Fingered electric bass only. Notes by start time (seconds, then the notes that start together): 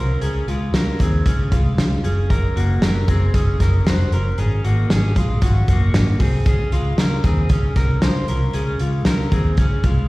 Already playing: C2
0.22 C#2
0.47 C#2
0.73 C#2
1.00 D#2
1.26 C#2
1.52 C2
1.77 C#2
2.04 F#1
2.56 F#1
2.82 F#1
3.08 F#1
3.34 F#1
3.60 F#1
3.86 F1
4.12 F#1
4.38 G#1
4.64 G#1
4.91 G#1
5.16 A#1
5.42 G#1
5.68 F#1
5.94 G#1
6.20 C2
6.46 C#2
6.72 C#2
6.98 C#2
7.24 D#2
7.50 C#2
7.76 C2
8.02 C#2
8.28 C2
8.54 C#2
8.81 C#2
9.06 C#2
9.32 D#2
9.58 C#2
9.84 C2